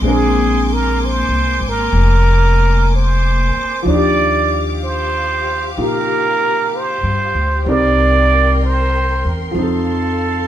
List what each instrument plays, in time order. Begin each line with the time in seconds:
Already playing: string section A#3 C6 D6
0.01 upright bass A#1, upright piano G#3 C4, string section G#5
0.06 upright piano D4 A#4, muted trumpet G#4
0.73 muted trumpet A#4
1.05 muted trumpet C5
1.28 upright bass C2
1.60 upright bass G#1
1.69 muted trumpet A#4
1.93 upright bass F1
2.96 muted trumpet C5
3.56 muted upright bass stroke
3.83 upright bass D#2, upright piano F3 D4, string section G4 F5
3.89 upright piano D#4, muted trumpet D5
3.94 upright piano G4
4.84 muted trumpet C5
5.77 upright bass A#2, upright piano D#4 F4 G4, muted trumpet A#4
6.76 muted trumpet C5
7.03 upright bass G2
7.34 upright bass D2
7.65 upright bass C2, upright piano G3 C4 D#4, string section A#4 G5 C6
7.69 upright piano A#4, muted trumpet D5
8.65 muted trumpet C5
9.25 upright bass E2
9.51 upright bass F2, upright piano F3 C4, string section A4 F5
9.57 upright piano D#4, muted trumpet A4
9.62 upright piano A4